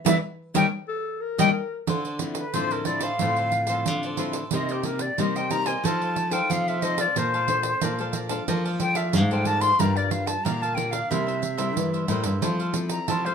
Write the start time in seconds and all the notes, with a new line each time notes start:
0.05 E3 G3 B3 B4 D5 E5, pandeiro
0.54 D#3 G3 A#3 A#4 C#5 D#5 G5, pandeiro
0.88 A4
1.21 A#4
1.38 D#3 G3 A#3 A#4 C#5 D#5 G5, pandeiro
1.87 D3 F4 A4 C5 D5, pandeiro
2.05 A4 C5 D5, pandeiro
2.19 F3 C4 E4, muted cavaquinho stroke, pandeiro
2.35 B4, pandeiro
2.54 A2 D3 F3 C4 E4 F4 A4 C5 D5, pandeiro
2.71 A4 A#4 C5 D5, pandeiro
2.85 F3 C4 E4 F4 A4 C5 D5, pandeiro
3.01 A4 C5 D5 F5, pandeiro
3.19 A2 D3 F3 C4 F4 A4 C5 D5, pandeiro
3.36 A4 C5 D5, pandeiro
3.52 muted cavaquinho stroke, pandeiro
3.67 F3 C4 A4 C5 D5, pandeiro
3.86 A2 D3, pandeiro
4.03 A4 C5 D5, pandeiro
4.17 F3 C4 E4 F4 A4 C5 D5, pandeiro
4.33 A4 C5 D5, pandeiro
4.51 C3 A#3 D#4 G4 A#4 C5 D#5, pandeiro
4.69 G4 A#4 C5 D#5, pandeiro
4.83 A#3 D#4 G4 A#4, muted cavaquinho stroke, pandeiro
4.99 D5, pandeiro
5.18 C3 G3 A#3 D#4 G4 A#4 C5 D#5, pandeiro
5.36 A#4 C5 D#5 G5, pandeiro
5.50 A#3 D#4 G4 A#4 C5 D#5 A#5, pandeiro
5.66 A#4 C5 D#5 G#5, pandeiro
5.84 F3 D#4 A4 C5 F5 A5, pandeiro
6.02 A4 C5 F5, pandeiro
6.16 muted cavaquinho stroke, pandeiro
6.31 D#4 A4 C5 F5 G5, pandeiro
6.50 C3 F3 F5, pandeiro
6.68 A4 C5 E5 F5, pandeiro
6.82 D#4 A4 C5 D#5 F5, pandeiro
6.98 A4 C5 D5 F5, pandeiro
7.15 A#2 A#3 D4 A4 A#4 C5 D5 F5 A5, pandeiro
7.34 D5 F5 A5, pandeiro
7.48 D4 A4 C5, muted cavaquinho stroke, pandeiro
7.63 pandeiro
7.81 A#2 F3 A#4 D5 F5 A5, pandeiro
7.99 D4 A4 C5 D5 F5 A5, pandeiro
8.13 A#4 D5 F5 A5, pandeiro
8.29 D4 A4 C5 D5 F5 A5, pandeiro
8.48 F3 A#3 D4 A4 A#4 C5 D5 F5 A5, pandeiro
8.65 D5 F5 A5, pandeiro
8.80 D4 A4 C5 G5, muted cavaquinho stroke, pandeiro
8.95 D5 E5 F5 A5, pandeiro
9.13 G#2 F3 F5, pandeiro
9.31 D4 A4 C5 D5 F5 G5 A5, pandeiro
9.45 A#4 D5 F5 A5, pandeiro
9.61 D5 F5 A5 C6, pandeiro
9.79 G2 G3 D4 F4 G4 A#4 D5 F5 A#5, pandeiro
9.96 A#4 D5 F5, pandeiro
10.11 D4 F4 A#4 F5, muted cavaquinho stroke, pandeiro
10.27 A5, pandeiro
10.44 A#2 D3 G4 A#4 D5 F5 A#5, pandeiro
10.62 A#4 D5 F5 A5, pandeiro
10.75 D4 F4 G4 A#4 D5 F5 G5, pandeiro
10.91 A#4 D5 F5, pandeiro
11.10 C3 G3 A#3 E4 A#4 C5 E5, pandeiro
11.27 A#4 C5 E5, pandeiro
11.42 muted cavaquinho stroke, pandeiro
11.57 G3 A#3 E4 A#4 C5 E5, pandeiro
11.77 G2 E3, pandeiro
11.93 A#4 C5 E5, pandeiro
12.08 A2 G3 A#3 E4 A#4 C5 E5, pandeiro
12.24 G2 A#4 C5 E5, pandeiro
12.42 F3 C4 E4 A4 C5 F5, pandeiro
12.60 A4 C5 F5, pandeiro
12.74 C4 E4 A4, muted cavaquinho stroke, pandeiro
12.89 A#5, pandeiro
13.08 C3 F3 E4 A4 C5 F5 A5, pandeiro
13.25 C4 E4 A4 C5 F5, pandeiro